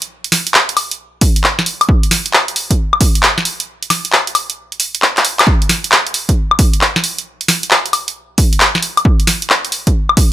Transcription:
0.02 closed hi-hat
0.24 closed hi-hat
0.32 snare, open hi-hat
0.47 closed hi-hat
0.54 clap
0.69 closed hi-hat
0.77 open hi-hat, high woodblock
0.91 closed hi-hat
1.21 kick, open hi-hat
1.36 closed hi-hat
1.44 clap
1.59 snare
1.66 open hi-hat
1.81 closed hi-hat, high woodblock
1.89 kick
2.03 closed hi-hat
2.11 snare, open hi-hat
2.26 closed hi-hat
2.33 clap
2.48 closed hi-hat
2.56 open hi-hat
2.71 kick, closed hi-hat
2.93 high woodblock
3.01 kick, open hi-hat
3.15 closed hi-hat
3.23 clap
3.38 snare
3.45 open hi-hat
3.60 closed hi-hat
3.83 closed hi-hat
3.90 snare, open hi-hat, high woodblock
4.05 closed hi-hat
4.12 clap
4.27 closed hi-hat
4.35 open hi-hat, high woodblock
4.50 closed hi-hat
4.72 closed hi-hat
4.80 open hi-hat
4.95 closed hi-hat
5.02 clap
5.17 clap, closed hi-hat
5.25 open hi-hat
5.39 clap, closed hi-hat, high woodblock
5.47 kick
5.62 closed hi-hat
5.69 snare, open hi-hat
5.84 closed hi-hat
5.92 clap
6.07 closed hi-hat
6.14 open hi-hat
6.29 kick, closed hi-hat
6.51 high woodblock
6.59 kick, open hi-hat
6.73 closed hi-hat
6.81 clap
6.96 snare
7.04 open hi-hat
7.18 closed hi-hat
7.41 closed hi-hat
7.48 snare, open hi-hat
7.63 closed hi-hat
7.71 clap
7.86 closed hi-hat
7.93 open hi-hat, high woodblock
8.08 closed hi-hat
8.38 kick, open hi-hat
8.53 closed hi-hat
8.60 clap
8.75 snare
8.83 open hi-hat
8.97 closed hi-hat, high woodblock
9.05 kick
9.20 closed hi-hat
9.27 snare, open hi-hat
9.42 closed hi-hat
9.50 clap
9.65 closed hi-hat
9.72 open hi-hat
9.87 kick, closed hi-hat
10.09 high woodblock
10.17 kick, open hi-hat

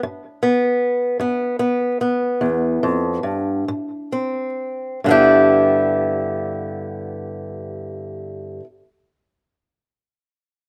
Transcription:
Already playing: D4
0.03 G2
0.43 B3
1.20 G2 B3
1.59 B3
2.01 B3
2.41 E2
2.83 F2
3.23 G2
3.68 G#2
4.12 C4
5.04 G2 D3
5.08 B3 E4 G4

